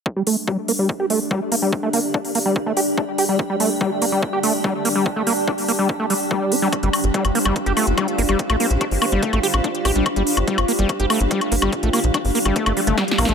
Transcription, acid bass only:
\new Staff \with { instrumentName = "Acid bass" } { \time 4/4 \key c \dorian \tempo 4 = 144 r16 g16 a16 r16 g16 r16 bes16 g16 r16 g'16 a16 r16 g16 r16 bes16 g16 | r16 a16 bes16 r16 d'16 r16 bes16 g16 r16 a16 g'16 r16 d'16 r16 g'16 g16 | r16 g16 a16 r16 g16 r16 bes16 g16 r16 g'16 a16 r16 g16 r16 bes16 g16 | r16 a16 bes16 r16 d'16 r16 bes16 g16 r16 a16 g16 r16 g8 d'16 g16 |
r16 g16 r8 g16 r16 bes16 g16 r16 g'16 a16 r16 g16 r16 bes16 g16 | r16 a16 bes16 r16 d'16 r16 bes16 g16 a16 a16 g'16 r16 d'16 r16 g'16 g16 | r16 g16 r8 g16 r16 bes16 g16 r16 g'16 a16 r16 g16 r16 bes16 g16 | r16 a16 bes16 r16 d'16 r16 bes16 g16 a16 a16 g16 a16 g16 r16 bes16 a16 | }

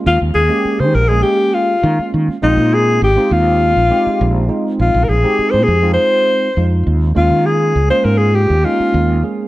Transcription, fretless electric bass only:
\new Staff \with { instrumentName = "Fretless electric bass" } { \clef bass \time 4/4 \key ees \mixolydian \tempo 4 = 101 ees,16 ees,16 ees,16 r8 ees16 bes,,8 r4 ees16 r16 ees16 r16 | bes,,16 bes,8. aes,,16 r16 ees,8. bes,,16 r8 bes,,8 r8 | bes,,16 bes,,16 bes,,16 r8 bes,16 f,8 r4 f,8 ees,8 | ees,16 ees8. des,16 r16 aes,8. ees,16 r8 ees,8 r8 | }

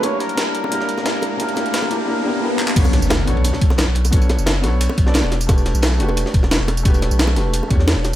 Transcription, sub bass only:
\new Staff \with { instrumentName = "Sub bass" } { \clef bass \time 4/4 \key e \dorian \tempo 4 = 176 r1 | r1 | b,,8. fis,,8. b,,8. r16 b,,8. b,,8. | b,,8. fis,,8. b,,8. r16 b,,8. e,,8. |
e,,8. b,,8. e,,8. r16 e,,8. e,,8. | e,,8. b,,8. e,,8. r16 e,8. e,,8. | }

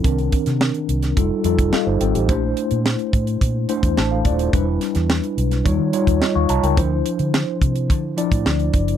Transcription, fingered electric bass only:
\new Staff \with { instrumentName = "Fingered electric bass" } { \clef bass \time 4/4 \key bes \lydian \tempo 4 = 107 c,8 r16 c8 r16 c,8 f,,16 r16 f,16 f,,16 r16 g,,16 aes,,16 a,,16 | bes,,8 r16 bes,8 r16 a,8 bes,8 r16 e,16 a,,8 ees,,8 | e,,8 r16 e,8 r16 b,,8 ees,16 ees16 r16 ees,16 r16 ees,16 c,16 des,16 | d,8 r16 d8 r16 c8 d8 r16 a,16 d,8 ges,,8 | }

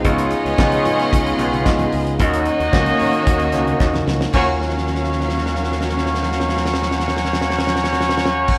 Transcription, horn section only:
\new Staff \with { instrumentName = "Horn section" } { \time 4/4 \key ees \minor \tempo 4 = 112 <aes des' f' des''>2.~ <aes des' f' des''>8 r8 | <bes ees' ges' ees''>2.~ <bes ees' ges' ees''>8 r8 | <bes des' ges' des''>1~ | <bes des' ges' des''>1 | }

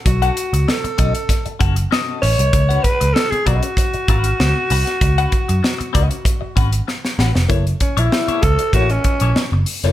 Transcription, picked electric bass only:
\new Staff \with { instrumentName = "Picked electric bass" } { \clef bass \time 4/4 \key cis \dorian \tempo 4 = 97 b,,8 r16 cis,16 r8 b,,16 r8. fis,,8 r8 a,,16 bis,,16 | cis,8 r16 cis,16 r8 b,,16 r8. gis,,8 cis,16 r16 bis,,16 r16 | cis,8 r16 fis,16 r8 cis,16 r8. gis,,8 r8 a,,16 eis,,16 | fis,,8 r16 ais,,16 r8 cis,16 r16 a,,8 r16 ais,,16 r16 fis,,16 r16 eis,,16 | }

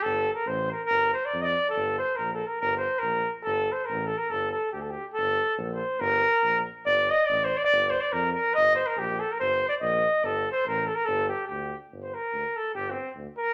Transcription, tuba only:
\new Staff \with { instrumentName = "Tuba" } { \clef bass \time 2/4 \key g \minor \tempo 4 = 142 g,,4 a,,4 | g,,4 f,4 | g,,4 bes,,4 | g,,4 bes,,4 |
g,,4 a,,4 | g,,4 d,4 | g,,4 bes,,4 | g,,4 bes,,4 |
g,,4 a,,4 | g,,4 f,4 | g,,4 bes,,4 | g,,4 bes,,4 |
g,,4 a,,4 | g,,4 d,4 | g,,4 d,8 r8 | g,,4 d,8 r8 | }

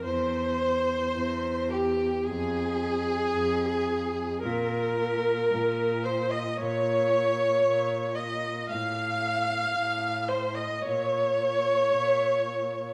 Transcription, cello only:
\new Staff \with { instrumentName = "Cello" } { \clef bass \time 4/4 \key f \minor \tempo 4 = 56 e,4 e,4 f,4 f,4 | bes,4 bes,4 bes,4 bes,4 | a,4 a,4 bes,4 bes,4 | }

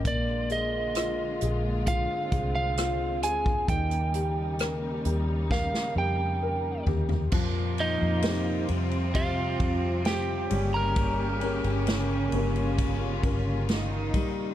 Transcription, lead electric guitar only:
\new Staff \with { instrumentName = "Lead electric guitar" } { \time 4/4 \key f \minor \tempo 4 = 66 d''8 ees''4. f''8. f''8. aes''8 | g''2 f''8 g''4 r8 | r8 <ees' ees''>4 r8 <f' f''>4 <g' g''>8. <bes' bes''>16~ | <bes' bes''>2.~ <bes' bes''>8 r8 | }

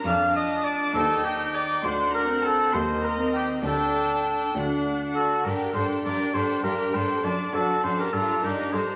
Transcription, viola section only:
\new Staff \with { instrumentName = "Viola section" } { \time 6/8 \key g \minor \tempo 4. = 67 d'4. ees'4. | d'8. c'8. bes8. c'8. | d'4. d'4~ d'16 r16 | d'8 d'8 d'8 d'8 d'8 d'8 |
d'8 d'8 d'8 d'8 d'8 d'8 | }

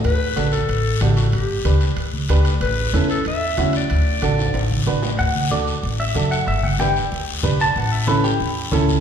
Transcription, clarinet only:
\new Staff \with { instrumentName = "Clarinet" } { \time 4/4 \key d \major \tempo 4 = 187 b'4. a'4. g'8 fis'8 | g'4. r2 r8 | b'4. a'8 e''4. d''8~ | d''2. r4 |
r1 | r1 | r1 | }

